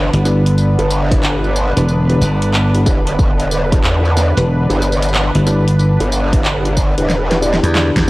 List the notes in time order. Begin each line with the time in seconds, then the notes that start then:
Already playing: G1 D3 B3 D4 B4
0.13 G1 D4 E4 G4 B4, closed hi-hat, tambourine
0.25 D4 E4 G4 B4, snare, tambourine
0.46 closed hi-hat, tambourine
0.58 tambourine
0.79 G1, closed hi-hat, tambourine
0.91 tambourine
1.11 D4 E4 G4 B4, kick, closed hi-hat, tambourine
1.23 clap, tambourine
1.44 tambourine
1.56 tambourine
1.77 E1 D4 E4 G4 B4, closed hi-hat, tambourine
1.89 tambourine
2.09 D4 E4 G4 B4, closed hi-hat, tambourine
2.21 G1, tambourine
2.42 closed hi-hat, tambourine
2.54 clap, tambourine
2.74 D4 E4 G4 B4, closed hi-hat, tambourine
2.86 E1 D4 E4 G4 B4, kick, tambourine
3.07 closed hi-hat, tambourine
3.19 E1, kick, tambourine
3.40 closed hi-hat, tambourine
3.51 tambourine
3.72 D4 E4 G4 B4, kick, closed hi-hat, tambourine
3.84 E2, clap, tambourine
4.05 tambourine
4.17 snare, tambourine
4.37 E1 D4 E4 G4 B4, closed hi-hat, tambourine
4.69 G1 D4 E4 G4 B4, closed hi-hat, tambourine
4.82 tambourine
4.92 tambourine
5.02 closed hi-hat, tambourine
5.08 tambourine
5.14 clap, tambourine
5.35 G1 D4 E4 G4 B4, closed hi-hat, tambourine
5.47 D4 E4 G4 B4, snare, tambourine
5.68 closed hi-hat, tambourine
5.79 tambourine
6.00 G1, closed hi-hat, tambourine
6.12 tambourine
6.33 D4 E4 G4 B4, kick, closed hi-hat, tambourine
6.45 clap, tambourine
6.65 closed hi-hat, tambourine
6.77 kick, tambourine
6.98 E1 D4 E4 G4 B4, closed hi-hat, tambourine
7.10 snare, tambourine
7.31 D4 E4 G4 B4, snare, closed hi-hat, tambourine
7.42 D4 E4 G4 D5, tambourine
7.53 snare, tambourine
7.63 E2, closed hi-hat
7.75 snare, clap, tambourine
7.96 E2, kick, snare, closed hi-hat, tambourine